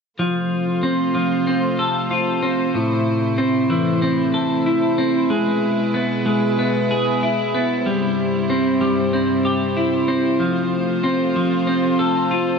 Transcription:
0.19 string section C3 A3 F4 C5, clean electric guitar F3
0.83 clean electric guitar C4
1.15 clean electric guitar F3
1.47 clean electric guitar C4
1.79 clean electric guitar A4
2.11 clean electric guitar F4
2.43 clean electric guitar C4
2.74 clean electric guitar A2, string section A3 E4
3.38 clean electric guitar C4
3.70 clean electric guitar E3
4.02 clean electric guitar C4
4.34 clean electric guitar A4
4.66 clean electric guitar E4
4.98 clean electric guitar C4
5.30 string section B2 G#3 B4, clean electric guitar G#3
5.94 clean electric guitar B3
6.26 clean electric guitar G#3
6.59 clean electric guitar B3
6.91 clean electric guitar G#4
7.23 clean electric guitar E4
7.55 clean electric guitar B3
7.86 string section G2 C3 G3 C5, clean electric guitar G3
8.50 clean electric guitar C4
8.81 clean electric guitar G3
9.13 clean electric guitar C4
9.45 clean electric guitar G4
9.77 clean electric guitar E4
10.08 clean electric guitar C4
10.40 clean electric guitar F3, string section A3 F4
11.04 clean electric guitar C4
11.36 clean electric guitar F3
11.67 clean electric guitar C4
11.99 clean electric guitar A4
12.31 clean electric guitar F4

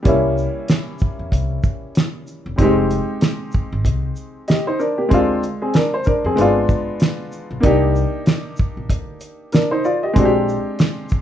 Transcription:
0.03 upright bass C2, upright piano G3 A#3 C#4, kick, closed hi-hat
0.08 upright piano E4
0.38 shaker
0.68 snare, closed hi-hat
0.99 kick, shaker
1.19 upright bass E2
1.32 upright bass C2, kick, closed hi-hat
1.64 kick, shaker
1.95 snare, closed hi-hat
2.27 shaker
2.46 upright bass E1
2.56 upright bass F1, upright piano G3 C4 D#4, kick, closed hi-hat
2.62 upright piano G#3 G4
2.91 closed hi-hat, shaker
3.21 snare, closed hi-hat
3.52 kick, shaker
3.72 upright bass G#1
3.85 upright bass C2, kick, closed hi-hat
4.16 shaker
4.48 upright piano G4 D#5, snare, closed hi-hat
4.67 upright piano D#4 C5
4.79 upright piano D4 A#4, shaker
4.98 upright piano A#3 G4
5.09 upright bass D2, upright piano G#3 C4 D4, kick, closed hi-hat
5.14 upright piano F4
5.43 closed hi-hat, shaker
5.62 upright piano C4 G#4
5.74 upright piano D4 A#4, snare, closed hi-hat
5.94 upright piano C5
6.04 upright piano D4 A#4, kick, shaker
6.24 upright bass F2, upright piano C4 G#4
6.36 upright bass G1, upright piano G#3 B3 D4, closed hi-hat
6.41 upright piano F4
6.69 kick, shaker
7.00 snare, closed hi-hat
7.32 shaker
7.51 upright bass B1
7.60 upright bass C2, upright piano A#3 D4 D#4, kick, closed hi-hat
7.66 upright piano G4
7.96 shaker
8.26 snare, closed hi-hat
8.57 kick, shaker
8.77 upright bass A#1
8.89 upright bass D2, kick, closed hi-hat
9.21 closed hi-hat, shaker
9.52 upright piano D4 A#4, snare, closed hi-hat
9.71 upright piano D#4 C5
9.85 upright piano F4 D5, shaker
10.03 upright piano G4 D#5
10.13 upright bass A#1, upright piano G#3 C4 D4, kick, closed hi-hat
10.19 upright piano F#4
10.25 upright piano G4
10.49 shaker
10.79 snare, closed hi-hat
11.09 kick, shaker

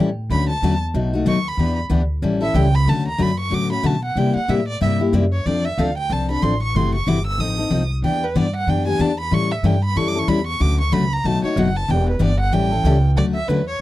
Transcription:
Already playing: upright bass A2
0.30 upright bass D2, steel-string acoustic guitar D3 F#3 A3 C#4 F#4, violin B5
0.50 violin A5
0.62 upright bass E2, steel-string acoustic guitar D3 F#3 A3 C#4 F#4
0.94 upright bass B1, steel-string acoustic guitar B2 F#3 A3 D#4 F#4
1.14 steel-string acoustic guitar A3 D#4 F#4
1.26 upright bass D#2, steel-string acoustic guitar B2 F#3 A3 D#4 F#4, violin C#6
1.48 violin B5
1.57 upright bass E2, steel-string acoustic guitar E3 B3 D4 G4
1.90 upright bass D2, steel-string acoustic guitar E3 B3 D4 G4
2.22 upright bass A1, steel-string acoustic guitar E3 G3 C#4 E4 A4
2.41 steel-string acoustic guitar C#4 E4 A4, violin E5
2.54 upright bass C#2, steel-string acoustic guitar E3 G3 C#4 E4 A4, violin G5
2.75 violin B5
2.86 upright bass D2, steel-string acoustic guitar D3 F#3 A3 C#4 F#4, violin A5
3.08 violin A#5
3.18 upright bass F#2, steel-string acoustic guitar D3 F#3 A3 C#4 F#4, violin B5
3.40 violin C#6
3.50 upright bass A2, steel-string acoustic guitar D3 F#3 A3 C#4 F#4
3.54 violin D6
3.71 steel-string acoustic guitar A3 C#4 F#4, violin B5
3.83 upright bass B2, steel-string acoustic guitar D3 F#3 A3 C#4 F#4, violin A5
4.05 violin F#5
4.16 upright bass C3, steel-string acoustic guitar C3 G3 A#3 E4 G4, violin G5
4.35 violin F#5, muted upright bass stroke
4.48 upright bass A2, steel-string acoustic guitar C3 G3 A#3 E4 G4, violin E5
4.68 violin D5
4.81 upright bass G2, steel-string acoustic guitar C3 G3 A#3 E4 G4, violin E5
4.99 steel-string acoustic guitar A#3 E4 G4
5.13 upright bass F#2, steel-string acoustic guitar C3 G3 A#3 E4 G4
5.32 violin C#5
5.46 upright bass F2, steel-string acoustic guitar F3 C4 D4 A4, violin D5
5.65 violin E5
5.78 upright bass D2, steel-string acoustic guitar F3 C4 D4 A4, violin F5
5.98 violin G5
6.10 upright bass C2, steel-string acoustic guitar F3 C4 D4 A4, violin A5
6.29 steel-string acoustic guitar C4 D4 A4, violin B5
6.42 upright bass A1, steel-string acoustic guitar F3 C4 D4 A4, violin C6
6.63 violin C#6
6.75 upright bass F#1, steel-string acoustic guitar C3 E3 A3 E4 F#4, violin C6
6.95 violin C#6
7.07 upright bass G1, steel-string acoustic guitar C3 E3 A3 E4 F#4, violin D6
7.27 violin E6
7.38 upright bass A1, steel-string acoustic guitar F3 C4 D#4 A4, violin D#6
7.58 steel-string acoustic guitar C4 D#4 A4
7.70 upright bass C2, steel-string acoustic guitar F3 C4 D#4 A4
8.02 upright bass E2, steel-string acoustic guitar E3 B3 D4 G4, violin G5
8.24 violin B4
8.35 upright bass G2, steel-string acoustic guitar E3 B3 D4 G4, violin D5
8.56 violin F#5
8.67 upright bass F#2, steel-string acoustic guitar E3 B3 D4 G4, violin G5
8.86 steel-string acoustic guitar B3 D4 G4, violin G#5
8.99 upright bass E2, steel-string acoustic guitar E3 B3 D4 G4, violin A5
9.20 violin B5
9.31 upright bass A2, steel-string acoustic guitar E3 G3 C#4 E4 A4, violin C#6
9.52 violin E5
9.63 upright bass G2, steel-string acoustic guitar E3 G3 C#4 E4 A4, violin G5
9.85 violin B5
9.96 upright bass F#2, steel-string acoustic guitar E3 G3 C#4 E4 A4, violin C#6
10.08 violin D6
10.15 steel-string acoustic guitar C#4 E4 A4, violin C#6
10.28 upright bass E2, steel-string acoustic guitar E3 G3 C#4 E4 A4, violin B5
10.47 violin C#6
10.60 upright bass D2, steel-string acoustic guitar D3 F#3 A3 C#4 F#4, violin D6
10.81 violin C#6
10.92 upright bass C#2, steel-string acoustic guitar D3 F#3 A3 C#4 F#4, violin B5
11.13 violin A#5
11.24 upright bass B1, steel-string acoustic guitar B2 F#3 A3 D#4 F#4, violin A5
11.43 steel-string acoustic guitar A3 D#4 F#4, violin C#5, muted upright bass stroke
11.56 upright bass F#1, steel-string acoustic guitar B2 F#3 A3 D#4 F#4, violin F#5
11.76 violin A5
11.88 upright bass E1, steel-string acoustic guitar E3 B3 D4 G4, violin G5
12.10 violin B4
12.19 upright bass G1, steel-string acoustic guitar E3 B3 D4 G4, violin D5
12.40 violin F#5
12.52 upright bass A1, steel-string acoustic guitar E3 G3 C#4 E4 A4, violin G5
12.71 steel-string acoustic guitar C#4 E4 A4
12.84 upright bass C#2, steel-string acoustic guitar E3 G3 C#4 E4 A4
13.16 upright bass D2, steel-string acoustic guitar D3 F#3 A3 C#4 F#4, violin D5
13.35 violin E5
13.48 upright bass E2, steel-string acoustic guitar D3 F#3 A3 C#4 F#4, violin B4
13.67 violin C#5

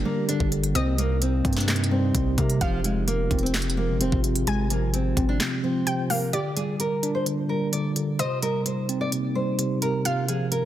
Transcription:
Already playing: tine electric piano D3 G3 D4, ambient pad F3 A#3 G4, synth pluck D5
0.05 tine electric piano G3, nylon-string guitar A#3
0.29 tine electric piano D3, nylon-string guitar D4, closed hi-hat
0.40 808-style bass G1, kick
0.52 tine electric piano D3, closed hi-hat
0.64 closed hi-hat
0.75 808-style bass C2, tine electric piano C3, ambient pad C3 A#3 D#4, nylon-string guitar C4, synth pluck D#5, closed hi-hat
0.98 tine electric piano G3, nylon-string guitar A#3, closed hi-hat
1.22 nylon-string guitar C4, closed hi-hat
1.45 808-style bass G2, tine electric piano C4, kick, closed hi-hat
1.53 snare, closed hi-hat
1.57 nylon-string guitar D4, closed hi-hat
1.68 tine electric piano C3, snare, clap, closed hi-hat
1.76 closed hi-hat
1.84 closed hi-hat
1.91 tine electric piano G3, nylon-string guitar C4
2.15 808-style bass C2, tine electric piano C3, kick, closed hi-hat
2.38 tine electric piano C3, 808-style bass C3, nylon-string guitar A#3, kick, closed hi-hat
2.50 closed hi-hat
2.61 808-style bass F1, tine electric piano C3, ambient pad D#3 G#3 F4, nylon-string guitar F3, synth pluck F5, kick, closed hi-hat
2.84 tine electric piano F3, nylon-string guitar G#3, closed hi-hat
3.07 nylon-string guitar A#3, closed hi-hat
3.31 808-style bass F1, tine electric piano C4, kick, closed hi-hat
3.39 closed hi-hat
3.43 nylon-string guitar C4, closed hi-hat
3.54 tine electric piano C3, snare, clap, closed hi-hat
3.62 closed hi-hat
3.70 closed hi-hat
3.77 tine electric piano F3, nylon-string guitar A#3
3.89 808-style bass G1
4.01 808-style bass F1, tine electric piano C3, nylon-string guitar C4, closed hi-hat
4.12 808-style bass G#1, kick
4.24 tine electric piano C3, closed hi-hat
4.36 closed hi-hat
4.47 808-style bass G#1, tine electric piano C3, ambient pad C3 F4, nylon-string guitar G#3, synth pluck G#5, closed hi-hat
4.70 tine electric piano F3, nylon-string guitar A#3, closed hi-hat
4.94 nylon-string guitar C4, closed hi-hat
5.17 808-style bass G#1, tine electric piano C4, kick, closed hi-hat
5.29 nylon-string guitar D4
5.40 tine electric piano C3, snare, clap, closed hi-hat
5.64 tine electric piano F3, nylon-string guitar C4
5.87 tine electric piano C3, synth pluck G5, closed hi-hat
6.10 tine electric piano C3, nylon-string guitar A#3, synth pluck F5, open hi-hat
6.33 ambient pad A#2 G3 F4, tine electric piano D3, nylon-string guitar G4, synth pluck D5, closed hi-hat
6.57 tine electric piano G3, nylon-string guitar G#4, closed hi-hat
6.80 nylon-string guitar A#4, closed hi-hat
7.03 tine electric piano D4, closed hi-hat
7.15 nylon-string guitar C5
7.26 tine electric piano D3, closed hi-hat
7.49 tine electric piano G3, nylon-string guitar A#4
7.73 tine electric piano D3, nylon-string guitar D5, closed hi-hat
7.96 tine electric piano D3, closed hi-hat
8.19 tine electric piano C3, ambient pad C3 A#3 D#4, nylon-string guitar C5, synth pluck D#5, closed hi-hat
8.42 tine electric piano G3, nylon-string guitar A#4, closed hi-hat
8.66 nylon-string guitar C5, closed hi-hat
8.89 tine electric piano C4, closed hi-hat
9.01 nylon-string guitar D5
9.12 tine electric piano C3, closed hi-hat
9.35 tine electric piano G3, nylon-string guitar C5
9.59 tine electric piano C3, closed hi-hat
9.82 tine electric piano C3, nylon-string guitar A#4, closed hi-hat
10.05 tine electric piano C3, ambient pad D#3 G#3 F4, nylon-string guitar F4, synth pluck F5, closed hi-hat
10.28 tine electric piano F3, nylon-string guitar G#4, closed hi-hat
10.52 nylon-string guitar A#4, closed hi-hat

